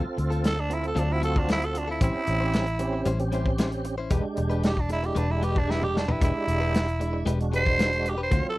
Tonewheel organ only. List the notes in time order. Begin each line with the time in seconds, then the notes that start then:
Already playing: C4 F4 A4
0.70 C4 F4 A4
1.10 C4 F4 F#4
2.00 C4 C#4 G4
2.79 C4 C#4 G4
3.19 C4 C#4 G4
4.11 G#3 D4 G4
4.89 G#3 D4 E4
5.30 G#3 D4 G4
6.21 G#3 D4 G4
7.01 G#3 D4 E4
7.40 G#3 D4 F#4
8.31 F#3 C4 F4